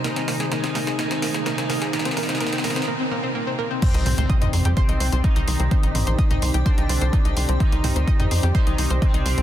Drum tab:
CC |--------------------------------|--------------------------------|x-------------------------------|--------------------------------|
HH |x-x-o-x-x-x-o-x-x-x-o-x-x-x-o-x-|x-x-o-x-x-x-o-x-----------------|x-x-o-x-x-x-o-x-x-x-o-x-x-x-o-x-|x-x-o-x-x-x-o-x-x-x-o-x-x-x-o-x-|
SD |o-o-o-o-o-o-o-o-o-o-o-o-o-o-o-o-|oooooooooooooooo----------------|--------------------------------|--------------------------------|
T2 |----o-----------------o---o-----|----o---------------------------|----o-----o---------------------|----o-----o---------------------|
BD |--------------------------------|--------------------------------|o-------o-------o-------o-------|o-------o-------o-------o-------|

CC |--------------------------------|
HH |x-x-o-x-x-x-o-x-x-x-o-x-x-x-o-x-|
SD |--------------------------------|
T2 |----o-----o---------------------|
BD |o-------o-------o-------o-------|